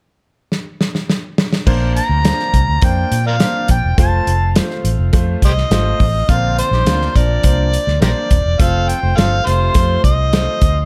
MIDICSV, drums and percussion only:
0, 0, Header, 1, 2, 480
1, 0, Start_track
1, 0, Key_signature, -2, "major"
1, 0, Tempo, 576923
1, 1391, Time_signature, 4, 2, 24, 8
1, 9029, End_track
2, 0, Start_track
2, 0, Title_t, "Drums"
2, 431, Note_on_c, 9, 38, 51
2, 514, Note_off_c, 9, 38, 0
2, 671, Note_on_c, 9, 38, 67
2, 754, Note_off_c, 9, 38, 0
2, 789, Note_on_c, 9, 38, 55
2, 873, Note_off_c, 9, 38, 0
2, 911, Note_on_c, 9, 38, 72
2, 994, Note_off_c, 9, 38, 0
2, 1150, Note_on_c, 9, 38, 99
2, 1233, Note_off_c, 9, 38, 0
2, 1269, Note_on_c, 9, 38, 83
2, 1352, Note_off_c, 9, 38, 0
2, 1388, Note_on_c, 9, 36, 97
2, 1388, Note_on_c, 9, 49, 79
2, 1471, Note_off_c, 9, 36, 0
2, 1472, Note_off_c, 9, 49, 0
2, 1635, Note_on_c, 9, 42, 60
2, 1719, Note_off_c, 9, 42, 0
2, 1869, Note_on_c, 9, 42, 79
2, 1874, Note_on_c, 9, 38, 104
2, 1952, Note_off_c, 9, 42, 0
2, 1957, Note_off_c, 9, 38, 0
2, 1991, Note_on_c, 9, 38, 33
2, 2075, Note_off_c, 9, 38, 0
2, 2111, Note_on_c, 9, 36, 70
2, 2111, Note_on_c, 9, 42, 74
2, 2194, Note_off_c, 9, 36, 0
2, 2195, Note_off_c, 9, 42, 0
2, 2343, Note_on_c, 9, 42, 78
2, 2349, Note_on_c, 9, 36, 95
2, 2426, Note_off_c, 9, 42, 0
2, 2433, Note_off_c, 9, 36, 0
2, 2593, Note_on_c, 9, 42, 66
2, 2676, Note_off_c, 9, 42, 0
2, 2828, Note_on_c, 9, 42, 78
2, 2832, Note_on_c, 9, 38, 100
2, 2911, Note_off_c, 9, 42, 0
2, 2915, Note_off_c, 9, 38, 0
2, 3065, Note_on_c, 9, 42, 69
2, 3071, Note_on_c, 9, 36, 86
2, 3148, Note_off_c, 9, 42, 0
2, 3155, Note_off_c, 9, 36, 0
2, 3311, Note_on_c, 9, 36, 104
2, 3311, Note_on_c, 9, 42, 90
2, 3394, Note_off_c, 9, 36, 0
2, 3394, Note_off_c, 9, 42, 0
2, 3555, Note_on_c, 9, 42, 62
2, 3638, Note_off_c, 9, 42, 0
2, 3790, Note_on_c, 9, 42, 81
2, 3796, Note_on_c, 9, 38, 106
2, 3874, Note_off_c, 9, 42, 0
2, 3879, Note_off_c, 9, 38, 0
2, 3913, Note_on_c, 9, 38, 33
2, 3997, Note_off_c, 9, 38, 0
2, 4033, Note_on_c, 9, 42, 70
2, 4117, Note_off_c, 9, 42, 0
2, 4267, Note_on_c, 9, 42, 77
2, 4272, Note_on_c, 9, 36, 98
2, 4350, Note_off_c, 9, 42, 0
2, 4355, Note_off_c, 9, 36, 0
2, 4512, Note_on_c, 9, 36, 78
2, 4514, Note_on_c, 9, 42, 69
2, 4595, Note_off_c, 9, 36, 0
2, 4597, Note_off_c, 9, 42, 0
2, 4638, Note_on_c, 9, 38, 30
2, 4722, Note_off_c, 9, 38, 0
2, 4752, Note_on_c, 9, 42, 75
2, 4756, Note_on_c, 9, 38, 105
2, 4835, Note_off_c, 9, 42, 0
2, 4839, Note_off_c, 9, 38, 0
2, 4991, Note_on_c, 9, 46, 51
2, 4993, Note_on_c, 9, 36, 87
2, 5074, Note_off_c, 9, 46, 0
2, 5076, Note_off_c, 9, 36, 0
2, 5232, Note_on_c, 9, 36, 98
2, 5232, Note_on_c, 9, 42, 88
2, 5315, Note_off_c, 9, 36, 0
2, 5315, Note_off_c, 9, 42, 0
2, 5479, Note_on_c, 9, 42, 67
2, 5562, Note_off_c, 9, 42, 0
2, 5595, Note_on_c, 9, 38, 28
2, 5678, Note_off_c, 9, 38, 0
2, 5712, Note_on_c, 9, 42, 79
2, 5717, Note_on_c, 9, 38, 101
2, 5795, Note_off_c, 9, 42, 0
2, 5800, Note_off_c, 9, 38, 0
2, 5835, Note_on_c, 9, 38, 33
2, 5918, Note_off_c, 9, 38, 0
2, 5953, Note_on_c, 9, 36, 75
2, 5956, Note_on_c, 9, 42, 70
2, 6036, Note_off_c, 9, 36, 0
2, 6039, Note_off_c, 9, 42, 0
2, 6186, Note_on_c, 9, 42, 86
2, 6191, Note_on_c, 9, 36, 85
2, 6269, Note_off_c, 9, 42, 0
2, 6274, Note_off_c, 9, 36, 0
2, 6436, Note_on_c, 9, 42, 65
2, 6519, Note_off_c, 9, 42, 0
2, 6555, Note_on_c, 9, 38, 27
2, 6638, Note_off_c, 9, 38, 0
2, 6672, Note_on_c, 9, 42, 75
2, 6676, Note_on_c, 9, 38, 105
2, 6755, Note_off_c, 9, 42, 0
2, 6759, Note_off_c, 9, 38, 0
2, 6911, Note_on_c, 9, 42, 67
2, 6913, Note_on_c, 9, 36, 87
2, 6994, Note_off_c, 9, 42, 0
2, 6996, Note_off_c, 9, 36, 0
2, 7151, Note_on_c, 9, 36, 101
2, 7151, Note_on_c, 9, 42, 90
2, 7235, Note_off_c, 9, 36, 0
2, 7235, Note_off_c, 9, 42, 0
2, 7400, Note_on_c, 9, 42, 67
2, 7484, Note_off_c, 9, 42, 0
2, 7638, Note_on_c, 9, 42, 77
2, 7643, Note_on_c, 9, 38, 103
2, 7721, Note_off_c, 9, 42, 0
2, 7726, Note_off_c, 9, 38, 0
2, 7879, Note_on_c, 9, 42, 73
2, 7962, Note_off_c, 9, 42, 0
2, 8108, Note_on_c, 9, 42, 85
2, 8113, Note_on_c, 9, 36, 91
2, 8191, Note_off_c, 9, 42, 0
2, 8196, Note_off_c, 9, 36, 0
2, 8353, Note_on_c, 9, 36, 83
2, 8358, Note_on_c, 9, 42, 60
2, 8436, Note_off_c, 9, 36, 0
2, 8441, Note_off_c, 9, 42, 0
2, 8594, Note_on_c, 9, 42, 73
2, 8598, Note_on_c, 9, 38, 97
2, 8677, Note_off_c, 9, 42, 0
2, 8681, Note_off_c, 9, 38, 0
2, 8831, Note_on_c, 9, 42, 66
2, 8834, Note_on_c, 9, 36, 90
2, 8915, Note_off_c, 9, 42, 0
2, 8917, Note_off_c, 9, 36, 0
2, 9029, End_track
0, 0, End_of_file